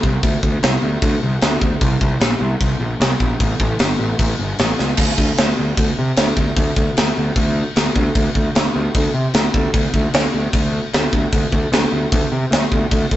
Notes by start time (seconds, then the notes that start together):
0.03 C2, kick
0.23 D2, kick, crash
0.43 D2, kick
0.63 C2, snare, crash
0.83 D2
1.02 D2, kick, crash
1.23 C2
1.41 D2, snare, crash
1.62 D2, kick
1.81 C2, kick, crash
2.01 C2, kick
2.20 A#1, snare, crash
2.41 C2
2.60 C2, kick, crash
2.80 A#1
3.00 C2, snare, crash
3.20 A#1, kick
3.40 A1, kick, crash
3.60 A1, kick
3.79 G1, snare, crash
3.99 A1
4.19 A1, kick, crash
4.39 G1
4.59 A1, snare, crash
4.79 C#2, snare
4.97 D2, kick, crash
5.18 D2, kick
5.37 D2, snare, crash
5.59 D2
5.77 D2, kick, crash
5.99 C3
6.16 D2, snare, crash
6.37 D2, kick
6.56 D2, kick, crash
6.76 D2, kick
6.97 D2, snare, crash
7.18 D2
7.36 D2, kick, crash
7.76 D2, snare, crash
7.96 D2, kick
8.15 D2, kick, crash
8.35 D2, kick
8.55 D2, snare, crash
8.76 D2
8.95 D2, kick, crash
9.14 C3
9.34 D2, snare, crash
9.54 D2, kick
9.74 D2, kick, crash
9.94 D2, kick
10.14 D2, snare, crash
10.34 D2
10.53 D2, kick, crash
10.93 D2, snare, crash
11.13 D2, kick
11.33 D2, kick, crash
11.52 D2, kick
11.72 D2, snare, crash
11.92 D2
12.12 D2, kick, crash
12.32 C3
12.51 D2, snare, crash
12.72 D2, kick
12.91 D2, kick, crash
13.11 D2, kick